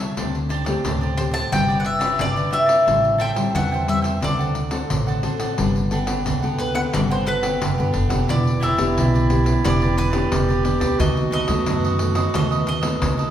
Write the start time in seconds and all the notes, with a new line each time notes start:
Already playing: E3
0.00 A4 C#5 E5
0.17 D2 D3 A3 C4 D4 G4 C5 D5, pandeiro
0.35 muted cavaquinho stroke, pandeiro
0.49 D4 G4 C5 D5, pandeiro
0.65 A3 C4 G4 C5 D5, pandeiro
0.84 D2 A2 D4 G4 C5 D5, pandeiro
1.01 G4 C5 D5, pandeiro
1.17 A3 C4 G4 C5, pandeiro
1.31 G4 C5 D5 A5, pandeiro
1.52 G1 G3 D4 F#4 G4 B4 D5 G5, pandeiro
1.68 G4 B4 D5, pandeiro
1.80 F#5
1.84 E5, muted cavaquinho stroke, pandeiro
1.99 D4 F#4 G4 B4 D5, pandeiro
2.19 G1 D3 D5, pandeiro
2.36 G4 B4 D5, pandeiro
2.51 D4 F#4 G4 B4 D5 E5, pandeiro
2.66 G4 B4 D5, pandeiro
2.85 A1 A2 G3 C4 E4 A4 C5 E5 G5, pandeiro
3.03 muted cavaquinho stroke, pandeiro
3.18 A4 C5 E5 G5, pandeiro
3.35 G3 C4 E4 C5 E5 G5, pandeiro
3.54 E2 E3 A4 C5 E5 F#5 G5, pandeiro
3.72 C5 E5 G5, pandeiro
3.86 G3 C4 E4 E5, pandeiro
4.02 C5 E5 G5, pandeiro
4.21 D2 D3 C4 D4 F#4 A4 C5 D5 F#5, pandeiro
4.39 C5 D5 F#5, pandeiro
4.55 muted cavaquinho stroke, pandeiro
4.71 C4 F#4 A4 C5 D5 F#5, pandeiro
4.90 A1 A2, pandeiro
5.07 C5 D5 F#5, pandeiro
5.23 C4 D4 F#4 A4 C5 D5 F#5, pandeiro
5.39 C5 D5 F#5, pandeiro
5.58 G1 G3 B3 D4 F#4 G4 A4 B4 F#5, pandeiro
5.76 muted cavaquinho stroke, pandeiro
5.91 B3 D4 F#4 G4 A4 B4 F#5, pandeiro
6.07 G4 B4 F#5, pandeiro
6.25 D2 D3 D4 G4 B4 F#5, pandeiro
6.42 B3 F#4 G4 A4 B4 F#5, pandeiro
6.58 B4, pandeiro
6.74 B3 F#4 G4 A4 B4 F#5, pandeiro
6.93 G1 G3 B3 D4 F#4 G4 A4 B4 D5 F#5, pandeiro
7.10 G4 B4 C5 F#5, pandeiro
7.26 B3 F#4 A4 B4, muted cavaquinho stroke, pandeiro
7.42 G4 B4 F#5, pandeiro
7.61 F#1 D3, pandeiro
7.78 G1 B3 F#4 G4 A4 B4 F#5, pandeiro
7.93 F#1 D4 G4 B4 F#5, pandeiro
8.09 E1 B3 D4 G4 B4 F#5, pandeiro
8.28 E1 E3 E4 G4 B4 D5, pandeiro
8.45 muted cavaquinho stroke, pandeiro
8.60 E4 G4 B4 D5 E5, pandeiro
8.77 E1 B3 D4 G4 B4 D5, pandeiro
8.96 B1 B2 E4 G4 B4 D5, pandeiro
9.14 G4 B4 D5, pandeiro
9.29 B3 D4 G4, pandeiro
9.44 G4 B4 D5, pandeiro
9.64 E1 E3 B3 D4 E4 G4 B4 D5, pandeiro
9.82 G4 B4 D5, pandeiro
9.96 B4, muted cavaquinho stroke, pandeiro
10.10 B3 D4 G4 B4 D5, pandeiro
10.32 E1 B2 G4, pandeiro
10.48 G4 B4 D5, pandeiro
10.63 B3 D4 E4 G4 B4 D5, pandeiro
10.80 D2 G4 B4 D5, pandeiro
10.99 D#2 D#3 A3 B3 D#4 F#4 A4 B4 D#5, pandeiro
11.17 muted cavaquinho stroke, pandeiro
11.31 D#4 A4 B4 D#5, pandeiro
11.47 D#2 A3 B3 F#4 A4 B4 D#5, pandeiro
11.66 F#2 D#3 D#4 A4 B4 D#5, pandeiro
11.84 A4 B4 D#5, pandeiro
11.99 A3 B3 F#4, pandeiro
12.15 A4 B4 D#5, pandeiro
12.33 D#2 D#3 A3 B3 D#4 F#4 A4 B4 D#5, pandeiro
12.51 A4 B4 D#5, pandeiro
12.67 D#5, muted cavaquinho stroke, pandeiro
12.81 A3 B3 F#4 A4 B4 D#5, pandeiro
13.02 D#2 D#3, pandeiro
13.18 A4 B4 D#5, pandeiro